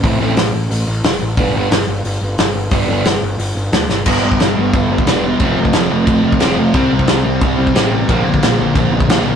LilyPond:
<<
  \new Staff \with { instrumentName = "Overdriven electric guitar" } { \clef bass \time 4/4 \key g \mixolydian \tempo 4 = 179 <a, e a c' e'>8 <a, e a c' e'>8 r2. | <g, d g b d'>8 <g, d g b d'>8 r2. | <g, d g b d'>8 <g, d g b d'>8 r2. | <g b d'>8 <g b>8 <g b>8 <g b>8 <g b>8 <g b>8 <g b d'>8 <g b>8 |
<f a c'>8 <f a>8 <f a>8 <f a>8 <f a>8 <f a>8 <f a c'>8 <f a>8 | <c g c'>8 <c g>8 <c g>8 <c g>8 <c g>8 <c g>8 <c g c'>8 <c g>8 | <bes, d f>8 <bes, d>8 <bes, d>8 <bes, d>8 <bes, d>8 <bes, d>8 <bes, d f>8 <bes, d>8 | }
  \new Staff \with { instrumentName = "Distorted electric guitar" } { \clef bass \time 4/4 \key g \mixolydian r1 | r1 | r1 | <g, d g>1 |
<f, c f>1 | <c g c'>1 | <bes, f bes>1 | }
  \new Staff \with { instrumentName = "Picked electric bass" } { \clef bass \time 4/4 \key g \mixolydian a,,8 a,,8 a,,8 a,,8 a,,8 a,,8 e,,8 a,,8 | g,,8 g,,8 g,,8 g,,8 g,,8 g,,8 g,,8 g,,8 | g,,8 g,,8 g,,8 g,,8 g,,8 g,,8 d,8 g,,8 | g,,8 g,,8 g,,8 g,,8 g,,4 e,,4 |
f,,8 f,,8 f,,8 f,,8 f,,8 f,,8 f,,8 f,,8 | c,8 c,8 c,8 c,8 c,4 a,,4 | bes,,8 bes,,8 bes,,8 bes,,8 bes,,8 bes,,8 bes,,8 bes,,8 | }
  \new DrumStaff \with { instrumentName = "Drums" } \drummode { \time 4/4 <hho bd>4 <hho sn>4 hho4 <hho sn>4 | <hho bd>4 <hho sn>4 hho4 <hho sn>4 | <hho bd>4 <hho sn>4 hho4 <hho sn>8 sn8 | <cymc bd>8. bd16 <cymc sn>4 <cymc bd>8. bd16 <cymc sn>4 |
<cymc bd>8. bd16 <cymc sn>4 <cymc bd>8. bd16 <cymc sn>4 | <cymc bd>8. bd16 <cymc sn>4 <cymc bd>8. bd16 <cymc sn>4 | <cymc bd>8. bd16 <cymc sn>4 <cymc bd>8. bd16 <cymc sn>4 | }
>>